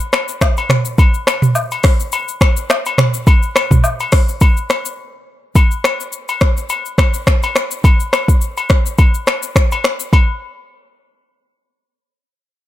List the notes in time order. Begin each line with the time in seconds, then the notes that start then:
0.00 shaker
0.13 finger snap, cross-stick, high agogo, shaker
0.28 shaker
0.41 finger snap, kick, cross-stick, low woodblock, shaker
0.57 high agogo, shaker
0.70 finger snap, cross-stick, mid tom, shaker
0.85 shaker
0.98 kick, high agogo, shaker
1.14 shaker
1.27 finger snap, cross-stick, high agogo, shaker
1.42 mid tom, shaker
1.55 low woodblock, shaker
1.71 high agogo, shaker
1.83 finger snap, kick, cross-stick, open hi-hat, shaker
2.00 shaker
2.12 high agogo, shaker
2.28 shaker
2.41 finger snap, kick, cross-stick, high agogo, shaker
2.57 shaker
2.70 finger snap, cross-stick, low woodblock, shaker
2.86 high agogo, shaker
2.98 finger snap, cross-stick, mid tom, shaker
3.14 shaker
3.27 kick, high agogo, shaker
3.43 shaker
3.56 finger snap, cross-stick, high agogo, shaker
3.71 kick, mid tom, shaker
3.84 low woodblock, shaker
4.00 high agogo, shaker
4.12 finger snap, kick, cross-stick, open hi-hat, shaker
4.29 shaker
4.41 kick, high agogo, shaker
4.57 shaker
4.70 finger snap, cross-stick, high agogo, shaker
4.85 shaker
5.55 kick, high agogo, shaker
5.71 shaker
5.84 finger snap, cross-stick, high agogo, shaker
6.00 shaker
6.12 shaker
6.28 high agogo, shaker
6.41 finger snap, kick, cross-stick, shaker
6.57 shaker
6.69 high agogo, shaker
6.86 shaker
6.98 finger snap, kick, cross-stick, high agogo, shaker
7.14 shaker
7.27 finger snap, kick, cross-stick, shaker
7.43 high agogo, shaker
7.56 finger snap, cross-stick, shaker
7.71 shaker
7.84 kick, high agogo, shaker
8.00 shaker
8.13 finger snap, cross-stick, high agogo, shaker
8.28 kick, shaker
8.41 shaker
8.57 high agogo, shaker
8.69 finger snap, kick, cross-stick, shaker
8.86 shaker
8.98 kick, high agogo, shaker
9.14 shaker
9.27 finger snap, cross-stick, high agogo, shaker
9.43 shaker
9.56 finger snap, kick, cross-stick, shaker
9.72 high agogo, shaker
9.84 finger snap, cross-stick, shaker
10.00 shaker
10.13 kick, high agogo